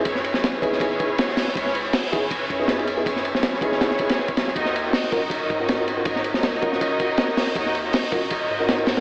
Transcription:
<<
  \new Staff \with { instrumentName = "String section" } { \time 4/4 \key cis \dorian \tempo 4 = 160 <cis' e' gis' b' cis''>8. <cis' e' gis' b' cis''>2.~ <cis' e' gis' b' cis''>16 | <cis' e' gis' b' cis''>8. <cis' e' gis' b' cis''>2.~ <cis' e' gis' b' cis''>16 | <cis' e' gis' b' cis''>8. <cis' e' gis' b' cis''>2.~ <cis' e' gis' b' cis''>16 | <dis' fis' ais' cis'' dis''>8. <dis' fis' ais' cis'' dis''>2.~ <dis' fis' ais' cis'' dis''>16 |
<dis' fis' ais' cis'' dis''>8. <dis' fis' ais' cis'' dis''>2.~ <dis' fis' ais' cis'' dis''>16 | <dis' fis' ais' cis'' dis''>8. <dis' fis' ais' cis'' dis''>2.~ <dis' fis' ais' cis'' dis''>16 | }
  \new Staff \with { instrumentName = "Grand piano" } { \time 4/4 \key cis \dorian r4. <b dis' e' gis'>8 <b dis' e' gis'>16 r16 <b dis' e' gis'>16 r4 r16 | r4. <b dis' e' gis'>16 r4 <b dis' e' gis'>8 <b dis' e' gis'>16 r16 <b dis' e' gis'>16 | r4. <b dis' e' gis'>8 <b dis' e' gis'>16 r16 <b dis' e' gis'>16 r4 r16 | r4. <cis' eis' fis' ais'>16 r4 <cis' eis' fis' ais'>8 <cis' eis' fis' ais'>16 r16 <cis' eis' fis' ais'>16 |
r4. <cis' eis' fis' ais'>8 <cis' eis' fis' ais'>16 r16 <cis' eis' fis' ais'>16 r4 r16 | r4. <cis' eis' fis' ais'>16 r4 <cis' eis' fis' ais'>8 <cis' eis' fis' ais'>16 r16 <cis' eis' fis' ais'>16 | }
  \new Staff \with { instrumentName = "Sub bass" } { \clef bass \time 4/4 \key cis \dorian fis,8. b,,8. gis,,4 r4. | cis,4 r8 gis,,4 fis,4.~ | fis,8. b,,8. gis,,4 r4 b,,8 | dis,4 r8 dis,,4 gis,4.~ |
gis,8. cis,8. dis,,4 r4. | dis,4 r8 dis,,4 gis,4. | }
  \new DrumStaff \with { instrumentName = "Drums" } \drummode { \time 4/4 <bd cymr>16 sn16 cymr16 sn16 <cymr sn>16 sn16 <bd cymr>16 sn16 <bd cymr>8 <bd cymr>8 <cymr sn>16 sn16 <hho sn>16 sn16 | <bd cymr>16 sn16 cymr8 <hho sn>16 sn16 <bd cymr>8 <bd cymr>8 <bd cymr>8 <cymr sn>16 cymr16 cymr8 | <bd cymr>16 sn16 cymr16 sn16 <cymr sn>16 sn16 <bd cymr>16 sn16 <cymr sn>16 sn16 <bd cymr>16 <cymr sn>16 sn16 <bd cymr>16 <cymr sn>16 sn16 | <bd cymr>16 sn16 cymr8 <hho sn>16 sn16 <bd cymr>8 <bd cymr>8 <bd cymr>8 <cymr sn>16 cymr16 cymr8 |
<bd cymr>16 sn16 cymr16 sn16 <cymr sn>16 sn16 <bd cymr>16 sn16 <bd cymr>8 <bd cymr>8 <cymr sn>16 sn16 <hho sn>16 sn16 | <bd cymr>16 sn16 cymr8 <hho sn>16 sn16 <bd cymr>8 <bd cymr>4 <cymr sn>16 cymr16 <hho sn>16 <hho sn>16 | }
>>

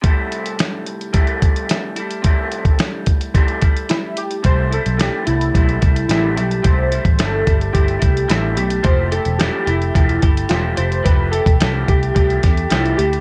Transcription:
<<
  \new Staff \with { instrumentName = "Synth keys" } { \time 4/4 \key c \major \tempo 4 = 109 r1 | r2. e'8 g'8 | c''8 a'8 g'8 e'4. e'8 g'8 | c''4 a'4 g'4 e'8 g'8 |
c''8 a'8 g'8 e'4. f'8 c''8 | b'8 a'4 g'8 g'4 e'8 g'8 | }
  \new Staff \with { instrumentName = "Clean electric guitar" } { \time 4/4 \key c \major <c g a e'>2 <c g a e'>4. <g a e'>8 | <c g a e'>2 <c g a e'>8 <g a e'>4. | <c g a e'>8 <g a e'>8 <c g a e'>8 <g a e'>8 <c g a e'>8 <g a e'>8 <c g a e'>8 <g a e'>8 | <c g a e'>8 <g a e'>8 <c g a e'>8 <g a e'>8 <c g a e'>8 <g a e'>8 <c g a e'>8 <g a e'>8 |
<f a e' g'>8 <a e' g'>8 <f a e' g'>8 <a e' g'>8 <f a e' g'>8 <a e' g'>8 <f a e' g'>8 <a e' g'>8 | <f a e' g'>8 <a e' g'>8 <f a e' g'>8 <a e' g'>8 <f a e' g'>8 <a e' g'>8 <f a e' g'>8 <a e' g'>8 | }
  \new Staff \with { instrumentName = "Picked electric bass" } { \clef bass \time 4/4 \key c \major r1 | r1 | c,8. b,,8 r16 c,8 b,,8 c,8 a,,8 b,,8 | c,8. a,,16 g,,8 g,,8 g,,8 c,8 a,,8 b,,8 |
f,,8. e,,8 r16 f,,8 e,,8 g,,8 e,,8 f,,8 | f,,8. e,,16 c,8 c,8 c,8 e,8 c,8 d,8 | }
  \new DrumStaff \with { instrumentName = "Drums" } \drummode { \time 4/4 <hh bd>8 hh16 hh16 <hh sn>8 hh16 hh16 <hh bd>16 hh16 <hh bd>16 hh16 <hh sn>8 hh16 hh16 | <hh bd>8 hh16 <hh bd>16 <hh sn>8 <hh bd>16 hh16 <hh bd>16 hh16 <hh bd>16 hh16 <hh sn>8 hh16 hh16 | <hh bd>8 hh16 hh16 <hh sn>8 hh16 hh16 <hh bd>16 hh16 <hh bd>16 hh16 <hh sn>8 hh16 hh16 | <hh bd>8 hh16 <hh bd>16 <hh sn>8 <hh bd>16 hh16 <hh bd>16 hh16 <hh bd>16 hh16 <hh sn>8 hh16 hh16 |
<hh bd>8 hh16 hh16 <hh sn>8 hh16 hh16 <hh bd>16 hh16 <hh bd>16 hh16 <hh sn>8 hh16 hh16 | <hh bd>8 hh16 <hh bd>16 <hh sn>8 <hh bd>16 hh16 <hh bd>16 hh16 <hh bd sn>16 hh16 <hh sn>16 hh16 hh16 hh16 | }
>>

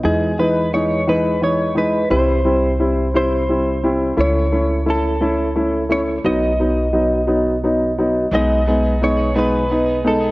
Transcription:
<<
  \new Staff \with { instrumentName = "Clean electric guitar" } { \time 6/8 \key b \mixolydian \tempo 4. = 58 gis'8 b'8 cis''8 b'8 cis''8 b'8 | c''4. c''4 r8 | cis''4 a'4 r8 cis''8 | dis''4. r4. |
dis''4 cis''8 b'4 a'8 | }
  \new Staff \with { instrumentName = "Clean electric guitar" } { \time 6/8 \key b \mixolydian r2. | r2. | r2. | r2. |
<b, fis b dis' gis'>8 <fis b dis' gis'>16 <b dis' gis'>8 <b dis' gis'>16 <b, fis b dis' gis'>8 <fis b dis' gis'>16 <b dis' gis'>8 <b dis' gis'>16 | }
  \new Staff \with { instrumentName = "Upright piano" } { \time 6/8 \key b \mixolydian <e gis dis'>8 <e gis dis'>8 <e gis dis'>8 <e gis dis'>8 <e gis dis'>8 <e gis dis'>8 | <g c' e'>8 <g c' e'>8 <g c' e'>8 <g c' e'>8 <g c' e'>8 <g c' e'>8 | <a cis' e'>8 <a cis' e'>8 <a cis' e'>8 <a cis' e'>8 <a cis' e'>8 <a cis' e'>8 | <fis b dis'>8 <fis b dis'>8 <fis b dis'>8 <fis b dis'>8 <fis b dis'>8 <fis b dis'>8 |
<gis b dis'>8 <gis b dis'>8 <gis b dis'>8 <gis b dis'>8 <b dis'>8 <gis b dis'>8 | }
  \new Staff \with { instrumentName = "Upright bass" } { \clef bass \time 6/8 \key b \mixolydian e,2. | c,2. | cis,2. | b,,2. |
b,,2. | }
>>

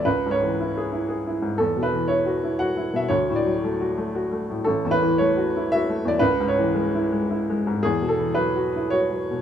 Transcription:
<<
  \new Staff \with { instrumentName = "Upright piano" } { \time 3/4 \key cis \phrygian \tempo 4 = 116 b'8 cis''2 r8 | a'8 b'8 cis''4 fis''8. e''16 | cis''8 d''2 r8 | a'8 b'8 cis''4 e''8. d''16 |
b'8 cis''2 r8 | gis'8 a'8 b'4 cis''4 | }
  \new Staff \with { instrumentName = "Upright piano" } { \clef bass \time 3/4 \key cis \phrygian \tuplet 3/2 { cis,8 gis,8 e8 e'8 gis'8 e'8 gis'8 e'8 gis,8 } | \tuplet 3/2 { e,8 b,8 e8 e'8 fis'8 e'8 fis'8 e'8 b,8 } | \tuplet 3/2 { d,8 a,8 fis8 a8 fis'8 a8 fis'8 a8 a,8 } | \tuplet 3/2 { a,,8 e,8 e8 a8 fis'8 e'8 fis'8 a8 e,8 } |
\tuplet 3/2 { cis,8 gis,8 e8 gis8 e'8 gis8 e'8 gis8 gis,8 } | \tuplet 3/2 { e,8 b,8 e8 fis8 fis'8 e'8 fis'8 fis8 b,8 } | }
>>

